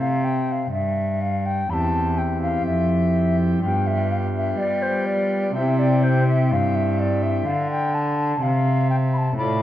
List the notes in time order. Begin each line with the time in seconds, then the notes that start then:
Already playing: C3
0.00 F5
0.24 G5
0.48 F5 G5
0.72 G2 E5
1.21 F5
1.46 G5
1.70 E2 C4 E4 G4 A5 B5
2.18 G5
2.42 F5
2.66 F2 E5
3.62 G2 B3 F4 G4 G5
3.87 E5
4.11 F5
4.34 E5
4.58 G3 D5
4.82 C5
5.06 D5
5.55 C3 C4 E4 G4 E5
5.79 D5
6.04 C5
6.28 E5
6.51 G2 F5
6.75 E5
6.99 D5
7.23 E5
7.46 D3 F5
7.71 G5
7.95 A5
8.42 C3 F5
8.90 G5
9.13 B5
9.18 A5
9.37 A2 A3 F4 D5 B5